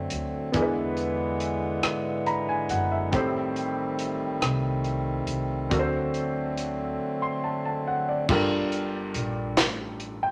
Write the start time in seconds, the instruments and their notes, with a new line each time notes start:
Already playing: harmonium D3 F#3 A3 C4, grand piano C4 D4 F#4 A4 C5
0.10 upright bass D2, closed hi-hat
0.52 upright bass E2, harmonium D3 E3 G#3 B3, grand piano E3 B3 D4 E4 G#4 A#4, kick, closed hi-hat
0.62 grand piano B4
0.97 closed hi-hat
1.40 closed hi-hat
1.83 upright bass G#2, cross-stick, closed hi-hat
2.26 grand piano A#5 B5, closed hi-hat
2.49 grand piano G#5
2.69 upright bass F#1, grand piano F#5, closed hi-hat
2.92 grand piano E5
3.12 upright bass A1, grand piano A2 C4 D#4 G4 A4 C5, harmonium D#3 G3 A3 C4, kick, closed hi-hat
3.56 closed hi-hat
3.99 closed hi-hat
4.41 upright bass C2, cross-stick, closed hi-hat
4.84 closed hi-hat
5.27 upright bass C2, closed hi-hat
5.70 upright bass D2, grand piano D3 C4 D4 F#4 A4 A#4, harmonium D3 F#3, kick, closed hi-hat
5.79 grand piano C5
6.14 closed hi-hat
6.58 closed hi-hat
7.22 grand piano C6
7.44 grand piano A5
7.66 grand piano A5
7.87 grand piano F#5
8.09 grand piano D5
8.28 upright bass G1, grand piano G2 D4 F4 G4 A4 A#4, kick, crash
8.72 closed hi-hat
9.14 upright bass A#1, closed hi-hat
9.57 upright bass A1, snare, clap, closed hi-hat
10.00 closed hi-hat
10.23 grand piano G5